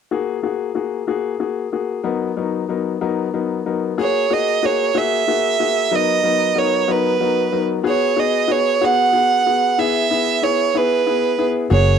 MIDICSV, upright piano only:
0, 0, Header, 1, 2, 480
1, 0, Start_track
1, 0, Tempo, 644468
1, 77, Time_signature, 6, 3, 24, 8
1, 8928, End_track
2, 0, Start_track
2, 0, Title_t, "Upright piano"
2, 0, Program_c, 0, 0
2, 82, Note_on_c, 0, 58, 50
2, 83, Note_on_c, 0, 66, 45
2, 88, Note_on_c, 0, 68, 53
2, 273, Note_off_c, 0, 58, 0
2, 274, Note_off_c, 0, 66, 0
2, 276, Note_off_c, 0, 68, 0
2, 317, Note_on_c, 0, 58, 38
2, 322, Note_on_c, 0, 66, 38
2, 323, Note_on_c, 0, 68, 41
2, 511, Note_off_c, 0, 58, 0
2, 514, Note_off_c, 0, 66, 0
2, 514, Note_off_c, 0, 68, 0
2, 556, Note_on_c, 0, 58, 42
2, 559, Note_on_c, 0, 66, 37
2, 563, Note_on_c, 0, 68, 40
2, 751, Note_off_c, 0, 58, 0
2, 752, Note_off_c, 0, 66, 0
2, 754, Note_off_c, 0, 68, 0
2, 798, Note_on_c, 0, 58, 47
2, 802, Note_on_c, 0, 66, 43
2, 803, Note_on_c, 0, 68, 53
2, 992, Note_off_c, 0, 58, 0
2, 994, Note_off_c, 0, 66, 0
2, 995, Note_off_c, 0, 68, 0
2, 1039, Note_on_c, 0, 58, 40
2, 1041, Note_on_c, 0, 66, 35
2, 1044, Note_on_c, 0, 68, 42
2, 1233, Note_off_c, 0, 58, 0
2, 1234, Note_off_c, 0, 66, 0
2, 1235, Note_off_c, 0, 68, 0
2, 1283, Note_on_c, 0, 58, 38
2, 1287, Note_on_c, 0, 66, 33
2, 1288, Note_on_c, 0, 68, 42
2, 1475, Note_off_c, 0, 58, 0
2, 1477, Note_off_c, 0, 66, 0
2, 1478, Note_off_c, 0, 68, 0
2, 1517, Note_on_c, 0, 54, 53
2, 1518, Note_on_c, 0, 59, 49
2, 1520, Note_on_c, 0, 63, 47
2, 1522, Note_on_c, 0, 70, 58
2, 1712, Note_off_c, 0, 54, 0
2, 1713, Note_off_c, 0, 59, 0
2, 1714, Note_off_c, 0, 63, 0
2, 1715, Note_off_c, 0, 70, 0
2, 1763, Note_on_c, 0, 54, 44
2, 1763, Note_on_c, 0, 70, 48
2, 1764, Note_on_c, 0, 59, 39
2, 1765, Note_on_c, 0, 63, 41
2, 1955, Note_off_c, 0, 54, 0
2, 1956, Note_off_c, 0, 59, 0
2, 1956, Note_off_c, 0, 63, 0
2, 1956, Note_off_c, 0, 70, 0
2, 2001, Note_on_c, 0, 54, 43
2, 2004, Note_on_c, 0, 59, 40
2, 2005, Note_on_c, 0, 63, 40
2, 2008, Note_on_c, 0, 70, 48
2, 2194, Note_off_c, 0, 54, 0
2, 2196, Note_off_c, 0, 59, 0
2, 2197, Note_off_c, 0, 63, 0
2, 2198, Note_off_c, 0, 70, 0
2, 2242, Note_on_c, 0, 59, 50
2, 2244, Note_on_c, 0, 54, 54
2, 2244, Note_on_c, 0, 70, 64
2, 2246, Note_on_c, 0, 63, 52
2, 2435, Note_off_c, 0, 59, 0
2, 2436, Note_off_c, 0, 54, 0
2, 2436, Note_off_c, 0, 70, 0
2, 2437, Note_off_c, 0, 63, 0
2, 2485, Note_on_c, 0, 54, 43
2, 2485, Note_on_c, 0, 59, 41
2, 2485, Note_on_c, 0, 63, 41
2, 2488, Note_on_c, 0, 70, 46
2, 2677, Note_off_c, 0, 54, 0
2, 2677, Note_off_c, 0, 59, 0
2, 2677, Note_off_c, 0, 63, 0
2, 2678, Note_off_c, 0, 70, 0
2, 2725, Note_on_c, 0, 59, 38
2, 2726, Note_on_c, 0, 54, 39
2, 2728, Note_on_c, 0, 63, 37
2, 2730, Note_on_c, 0, 70, 47
2, 2917, Note_off_c, 0, 59, 0
2, 2918, Note_off_c, 0, 54, 0
2, 2918, Note_off_c, 0, 63, 0
2, 2919, Note_off_c, 0, 70, 0
2, 2961, Note_on_c, 0, 58, 58
2, 2964, Note_on_c, 0, 66, 55
2, 2965, Note_on_c, 0, 68, 69
2, 3155, Note_off_c, 0, 58, 0
2, 3156, Note_off_c, 0, 66, 0
2, 3157, Note_off_c, 0, 68, 0
2, 3202, Note_on_c, 0, 58, 54
2, 3205, Note_on_c, 0, 68, 52
2, 3208, Note_on_c, 0, 66, 45
2, 3396, Note_off_c, 0, 58, 0
2, 3397, Note_off_c, 0, 68, 0
2, 3399, Note_off_c, 0, 66, 0
2, 3445, Note_on_c, 0, 58, 53
2, 3446, Note_on_c, 0, 66, 47
2, 3449, Note_on_c, 0, 68, 57
2, 3637, Note_off_c, 0, 58, 0
2, 3638, Note_off_c, 0, 66, 0
2, 3639, Note_off_c, 0, 68, 0
2, 3684, Note_on_c, 0, 58, 60
2, 3685, Note_on_c, 0, 66, 57
2, 3691, Note_on_c, 0, 68, 67
2, 3877, Note_off_c, 0, 58, 0
2, 3877, Note_off_c, 0, 66, 0
2, 3880, Note_off_c, 0, 68, 0
2, 3928, Note_on_c, 0, 58, 53
2, 3932, Note_on_c, 0, 66, 44
2, 3934, Note_on_c, 0, 68, 53
2, 4119, Note_off_c, 0, 58, 0
2, 4121, Note_off_c, 0, 66, 0
2, 4122, Note_off_c, 0, 68, 0
2, 4169, Note_on_c, 0, 58, 47
2, 4171, Note_on_c, 0, 66, 43
2, 4173, Note_on_c, 0, 68, 47
2, 4359, Note_off_c, 0, 58, 0
2, 4360, Note_off_c, 0, 66, 0
2, 4361, Note_off_c, 0, 68, 0
2, 4404, Note_on_c, 0, 54, 63
2, 4404, Note_on_c, 0, 59, 59
2, 4405, Note_on_c, 0, 63, 55
2, 4410, Note_on_c, 0, 70, 67
2, 4597, Note_off_c, 0, 54, 0
2, 4597, Note_off_c, 0, 59, 0
2, 4597, Note_off_c, 0, 63, 0
2, 4600, Note_off_c, 0, 70, 0
2, 4641, Note_on_c, 0, 59, 48
2, 4642, Note_on_c, 0, 54, 50
2, 4643, Note_on_c, 0, 63, 46
2, 4649, Note_on_c, 0, 70, 53
2, 4835, Note_off_c, 0, 59, 0
2, 4836, Note_off_c, 0, 54, 0
2, 4836, Note_off_c, 0, 63, 0
2, 4839, Note_off_c, 0, 70, 0
2, 4879, Note_on_c, 0, 59, 45
2, 4882, Note_on_c, 0, 54, 49
2, 4882, Note_on_c, 0, 70, 59
2, 4883, Note_on_c, 0, 63, 50
2, 5074, Note_off_c, 0, 59, 0
2, 5076, Note_off_c, 0, 54, 0
2, 5076, Note_off_c, 0, 63, 0
2, 5076, Note_off_c, 0, 70, 0
2, 5121, Note_on_c, 0, 59, 59
2, 5123, Note_on_c, 0, 63, 60
2, 5124, Note_on_c, 0, 54, 64
2, 5127, Note_on_c, 0, 70, 67
2, 5315, Note_off_c, 0, 59, 0
2, 5316, Note_off_c, 0, 54, 0
2, 5316, Note_off_c, 0, 63, 0
2, 5318, Note_off_c, 0, 70, 0
2, 5363, Note_on_c, 0, 54, 54
2, 5366, Note_on_c, 0, 59, 50
2, 5367, Note_on_c, 0, 70, 55
2, 5368, Note_on_c, 0, 63, 44
2, 5556, Note_off_c, 0, 54, 0
2, 5558, Note_off_c, 0, 59, 0
2, 5558, Note_off_c, 0, 70, 0
2, 5559, Note_off_c, 0, 63, 0
2, 5600, Note_on_c, 0, 54, 49
2, 5601, Note_on_c, 0, 63, 42
2, 5603, Note_on_c, 0, 59, 42
2, 5605, Note_on_c, 0, 70, 55
2, 5795, Note_off_c, 0, 54, 0
2, 5795, Note_off_c, 0, 63, 0
2, 5796, Note_off_c, 0, 59, 0
2, 5797, Note_off_c, 0, 70, 0
2, 5833, Note_on_c, 0, 59, 65
2, 5838, Note_on_c, 0, 66, 63
2, 5840, Note_on_c, 0, 68, 74
2, 6031, Note_off_c, 0, 59, 0
2, 6033, Note_off_c, 0, 66, 0
2, 6035, Note_off_c, 0, 68, 0
2, 6080, Note_on_c, 0, 66, 49
2, 6082, Note_on_c, 0, 59, 52
2, 6084, Note_on_c, 0, 68, 62
2, 6274, Note_off_c, 0, 66, 0
2, 6275, Note_off_c, 0, 59, 0
2, 6276, Note_off_c, 0, 68, 0
2, 6313, Note_on_c, 0, 59, 49
2, 6314, Note_on_c, 0, 66, 47
2, 6320, Note_on_c, 0, 68, 61
2, 6510, Note_off_c, 0, 59, 0
2, 6511, Note_off_c, 0, 66, 0
2, 6514, Note_off_c, 0, 68, 0
2, 6563, Note_on_c, 0, 59, 64
2, 6564, Note_on_c, 0, 66, 60
2, 6565, Note_on_c, 0, 68, 68
2, 6755, Note_off_c, 0, 59, 0
2, 6756, Note_off_c, 0, 66, 0
2, 6756, Note_off_c, 0, 68, 0
2, 6796, Note_on_c, 0, 59, 48
2, 6800, Note_on_c, 0, 66, 44
2, 6801, Note_on_c, 0, 68, 57
2, 6992, Note_off_c, 0, 59, 0
2, 6994, Note_off_c, 0, 66, 0
2, 6994, Note_off_c, 0, 68, 0
2, 7045, Note_on_c, 0, 59, 45
2, 7048, Note_on_c, 0, 66, 41
2, 7051, Note_on_c, 0, 68, 51
2, 7236, Note_off_c, 0, 59, 0
2, 7238, Note_off_c, 0, 66, 0
2, 7239, Note_off_c, 0, 68, 0
2, 7284, Note_on_c, 0, 59, 62
2, 7285, Note_on_c, 0, 64, 60
2, 7290, Note_on_c, 0, 68, 74
2, 7475, Note_off_c, 0, 59, 0
2, 7476, Note_off_c, 0, 64, 0
2, 7479, Note_off_c, 0, 68, 0
2, 7522, Note_on_c, 0, 59, 49
2, 7528, Note_on_c, 0, 64, 47
2, 7530, Note_on_c, 0, 68, 54
2, 7715, Note_off_c, 0, 59, 0
2, 7717, Note_off_c, 0, 64, 0
2, 7718, Note_off_c, 0, 68, 0
2, 7760, Note_on_c, 0, 59, 49
2, 7763, Note_on_c, 0, 64, 49
2, 7766, Note_on_c, 0, 68, 53
2, 7953, Note_off_c, 0, 59, 0
2, 7955, Note_off_c, 0, 64, 0
2, 7957, Note_off_c, 0, 68, 0
2, 8000, Note_on_c, 0, 59, 58
2, 8005, Note_on_c, 0, 64, 57
2, 8010, Note_on_c, 0, 68, 66
2, 8193, Note_off_c, 0, 59, 0
2, 8196, Note_off_c, 0, 64, 0
2, 8198, Note_off_c, 0, 68, 0
2, 8238, Note_on_c, 0, 59, 49
2, 8241, Note_on_c, 0, 64, 44
2, 8243, Note_on_c, 0, 68, 56
2, 8432, Note_off_c, 0, 59, 0
2, 8433, Note_off_c, 0, 64, 0
2, 8435, Note_off_c, 0, 68, 0
2, 8476, Note_on_c, 0, 59, 46
2, 8479, Note_on_c, 0, 64, 43
2, 8481, Note_on_c, 0, 68, 51
2, 8671, Note_off_c, 0, 59, 0
2, 8673, Note_off_c, 0, 64, 0
2, 8674, Note_off_c, 0, 68, 0
2, 8713, Note_on_c, 0, 58, 63
2, 8715, Note_on_c, 0, 66, 60
2, 8716, Note_on_c, 0, 68, 71
2, 8909, Note_off_c, 0, 58, 0
2, 8910, Note_off_c, 0, 66, 0
2, 8911, Note_off_c, 0, 68, 0
2, 8928, End_track
0, 0, End_of_file